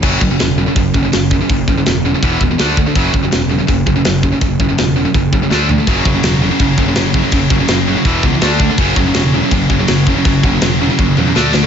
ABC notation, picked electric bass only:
X:1
M:4/4
L:1/8
Q:1/4=164
K:F#m
V:1 name="Picked electric bass" clef=bass
F,,, F,,, E,,,2 F,,, F,,, F,,,2 | F,,, F,,, E,,,2 E,,, E,,, D,,2 | F,,, F,,, E,,,2 F,,, F,,, F,,,2 | F,,, F,,, E,,,2 F,,, F,,, D,,2 |
F,,, F,,, E,,,2 F,,, F,,, F,,,2 | F,,, F,,, F,,,2 E,,, C,, D,,2 | F,,, F,,, E,,,2 F,,, F,,, F,,,2 | F,,, F,,, E,,,2 F,,, E,, D,,2 |]